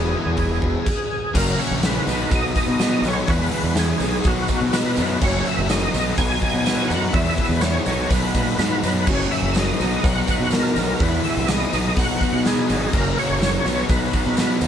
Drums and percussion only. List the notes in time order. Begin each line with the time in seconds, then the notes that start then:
0.37 kick, open hi-hat
0.62 kick
0.86 kick, crash
1.35 kick, crash, tambourine
1.59 open hi-hat
1.83 snare, open hi-hat, tambourine
2.07 open hi-hat, tambourine
2.31 kick, open hi-hat, tambourine
2.55 kick, open hi-hat, tambourine
2.79 snare, open hi-hat, tambourine
2.92 snare
3.03 open hi-hat, tambourine
3.27 kick, open hi-hat, tambourine
3.51 open hi-hat
3.75 snare, open hi-hat, tambourine
4.00 open hi-hat, tambourine
4.24 kick, open hi-hat, tambourine
4.48 kick, open hi-hat, tambourine
4.73 snare, open hi-hat, tambourine
4.85 snare
4.96 open hi-hat, tambourine
5.21 kick, crash, tambourine
5.45 open hi-hat
5.69 snare, open hi-hat, tambourine
5.94 open hi-hat, tambourine
6.17 kick, open hi-hat, tambourine
6.41 kick, open hi-hat
6.66 snare, open hi-hat, tambourine
6.79 snare
6.90 open hi-hat, tambourine
7.13 kick, open hi-hat, tambourine
7.37 kick, open hi-hat, tambourine
7.61 snare, open hi-hat, tambourine
7.86 open hi-hat, tambourine
8.10 kick, open hi-hat, tambourine
8.34 kick, open hi-hat, tambourine
8.59 snare, open hi-hat, tambourine
8.83 open hi-hat, tambourine
9.07 kick, tambourine, crash
9.32 open hi-hat
9.54 snare, open hi-hat, tambourine
9.80 open hi-hat, tambourine
10.04 kick, open hi-hat, tambourine
10.27 kick, open hi-hat, tambourine
10.51 snare, open hi-hat, tambourine
10.65 snare
10.76 open hi-hat, tambourine
11.00 kick, open hi-hat, tambourine
11.24 open hi-hat
11.48 snare, open hi-hat, tambourine
11.73 open hi-hat, tambourine
11.96 kick, open hi-hat, tambourine
12.21 kick, open hi-hat, tambourine
12.45 snare, open hi-hat, tambourine
12.69 open hi-hat, tambourine
12.93 kick, crash, tambourine
13.18 open hi-hat
13.42 snare, open hi-hat, tambourine
13.66 open hi-hat, tambourine
13.89 kick, open hi-hat, tambourine
14.13 kick, open hi-hat, tambourine
14.37 snare, open hi-hat, tambourine
14.51 snare
14.61 open hi-hat, tambourine